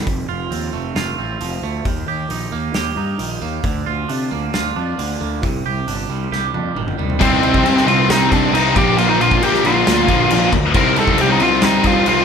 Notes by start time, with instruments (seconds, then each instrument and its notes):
0.05 picked electric bass F1, clean electric guitar F2, kick, open hi-hat
0.29 picked electric bass F1, clean electric guitar F4
0.51 picked electric bass D#2, clean electric guitar C4, open hi-hat
0.73 picked electric bass F1, clean electric guitar A3
0.95 picked electric bass F1, clean electric guitar F4, snare, open hi-hat
1.18 picked electric bass A1, clean electric guitar C4
1.40 picked electric bass F1, clean electric guitar F3, open hi-hat
1.63 picked electric bass D2, clean electric guitar A3
1.85 picked electric bass D#2, clean electric guitar D#3, kick, open hi-hat
2.07 picked electric bass D#2, clean electric guitar G4
2.29 picked electric bass A#1, clean electric guitar D#4, open hi-hat
2.51 picked electric bass D#2, clean electric guitar A#3
2.74 picked electric bass D#2, clean electric guitar G4, snare, open hi-hat
2.96 picked electric bass G2, clean electric guitar D#4
3.19 picked electric bass A#1, clean electric guitar D#3, open hi-hat
3.42 picked electric bass D#2, clean electric guitar A#3
3.64 picked electric bass D2, clean electric guitar D3, kick, open hi-hat
3.86 picked electric bass D2, clean electric guitar F4
4.08 picked electric bass C3, clean electric guitar D4, open hi-hat
4.31 picked electric bass D2, clean electric guitar A#3
4.54 picked electric bass D2, clean electric guitar F4, snare, open hi-hat
4.76 picked electric bass F2, clean electric guitar D4
4.98 picked electric bass D2, clean electric guitar D3, open hi-hat
5.21 picked electric bass D2, clean electric guitar A#3
5.43 picked electric bass C2, clean electric guitar C3, kick, open hi-hat
5.65 picked electric bass C2, clean electric guitar G4
5.88 picked electric bass G1, clean electric guitar D4, open hi-hat
6.09 picked electric bass C2, clean electric guitar G3
6.32 picked electric bass C2, clean electric guitar G4, snare
6.54 picked electric bass F2, clean electric guitar D4, high tom
6.75 picked electric bass G1, clean electric guitar D#3, mid tom
6.88 mid tom
6.97 picked electric bass C2, clean electric guitar G3, floor tom
7.10 floor tom
7.19 picked electric bass C2, distorted electric guitar C3 G3 C4 D#4, lead electric guitar C4 C5, tonewheel organ G4 C5 D#5 C6, kick, crash
7.42 picked electric bass C2, crash
7.54 kick
7.65 picked electric bass C2, crash
7.77 snare
7.86 picked electric bass C2, distorted electric guitar C3 G3 C4 D#4, lead electric guitar F4 F5, crash
8.09 picked electric bass C2, lead electric guitar D#4 D#5, snare, crash
8.32 lead electric guitar D4 D5, kick, crash
8.52 picked electric bass C2, distorted electric guitar C3 G3 C4, lead electric guitar D#4 D#5, crash
8.75 picked electric bass A#1, distorted electric guitar A#2 D3 F3 A#3 D4, tonewheel organ F4 A#4 D5 A#5, lead electric guitar G4 G5, kick, crash
8.98 picked electric bass A#1, lead electric guitar F4 F5, crash
9.09 lead electric guitar D#4 D#5
9.20 picked electric bass A#1, lead electric guitar F4 F5, crash
9.31 kick
9.42 picked electric bass A#1, distorted electric guitar A#2 D3 F3 A#3 D4, lead electric guitar G4 G5, crash
9.54 snare
9.64 picked electric bass A#1, lead electric guitar F4 F5, crash
9.86 picked electric bass D2, snare, crash
10.08 picked electric bass A#1, distorted electric guitar A#2 F3 A#3, kick, crash
10.29 picked electric bass A#1, distorted electric guitar A#2 D3 F3 A#3 D4, crash
10.53 picked electric bass D2, kick, crash
10.74 picked electric bass C2, distorted electric guitar C3 G3 C4 D#4, tonewheel organ G4 C5 D#5 C6, lead electric guitar A#4 A#5, kick, crash
10.96 picked electric bass C2, lead electric guitar A4 A5, crash
11.07 kick
11.18 picked electric bass C2, lead electric guitar G4 G5, crash
11.31 lead electric guitar D#4 D#5
11.38 picked electric bass C2, distorted electric guitar C3 G3 C4 D#4, lead electric guitar F4, crash
11.43 lead electric guitar F5
11.62 picked electric bass C2, lead electric guitar D#4 D#5, snare, crash
11.84 lead electric guitar F4, kick, crash
11.88 lead electric guitar F5
12.05 picked electric bass C2, distorted electric guitar C3 G3 C4, lead electric guitar F4 F5, crash